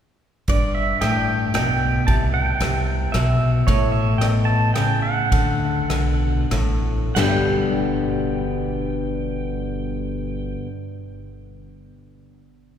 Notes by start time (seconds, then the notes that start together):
0.48 G1 G2 D5, kick, ride
0.75 E5
1.01 A1 A2 G5, cross-stick, ride
1.54 B1 B2 G5, cross-stick, ride
2.07 C2 C3 A5, kick, ride
2.34 G5
2.60 C2 C3, cross-stick, ride
3.12 B1 B2 E5, cross-stick, ride
3.67 A1 A2 C#5, kick, ride
3.92 E5
4.18 B2 G5, cross-stick, ride
4.45 A5
4.74 C#3 G5, cross-stick, ride
5.02 F#5
5.32 D2 D3, kick, ride
5.90 B1 B2, cross-stick, ride
6.51 A1 A2, cross-stick, ride
7.15 G1 G2 B2 D3 G3 B3 G4 G5, snare, china